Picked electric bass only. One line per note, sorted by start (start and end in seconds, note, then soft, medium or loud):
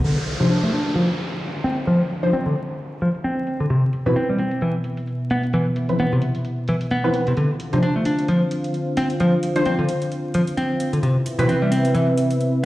0.04 0.16 D3 medium
0.40 0.49 C3 medium
0.50 0.62 D4 medium
0.63 0.71 A3 medium
0.73 0.95 D4 medium
0.95 1.08 F3 medium
1.64 1.74 C4 medium
1.87 1.99 F3 loud
2.33 2.45 C4 medium
2.46 2.54 D3 medium
3.02 3.08 F3 medium
3.24 3.59 C4 medium
3.60 3.65 D3 medium
3.70 3.83 C3 medium
4.06 4.15 B2 medium
4.16 4.28 C4 medium
4.29 4.37 G3 medium
4.39 4.61 C4 medium
4.62 4.74 E3 medium
5.31 5.41 B3 medium
5.54 5.66 E3 loud
6.00 6.11 B3 medium
6.13 6.20 C3 medium
6.69 6.75 E3 medium
6.91 7.26 B3 medium
7.28 7.32 C3 medium
7.37 7.49 D3 loud
7.73 7.82 C3 medium
7.83 7.94 D4 medium
7.96 8.03 A3 medium
8.06 8.27 D4 medium
8.29 8.41 F3 loud
8.97 9.07 C4 medium
9.20 9.32 F3 loud
9.66 9.77 C4 medium
9.79 9.86 D3 medium
10.35 10.41 F3 medium
10.57 10.92 C4 medium
10.93 10.98 D3 medium
11.03 11.15 C3 loud
11.39 11.48 B2 medium
11.49 11.61 C4 medium
11.62 11.70 G3 medium
11.72 11.94 C4 medium
11.95 12.07 E3 loud